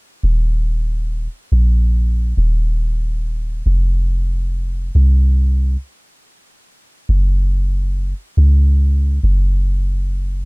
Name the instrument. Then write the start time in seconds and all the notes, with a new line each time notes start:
808-style bass
0.23 D#1
1.52 A#1
2.37 D#1
3.66 F1
4.95 C2
7.09 F#1
8.37 C#2
9.23 F#1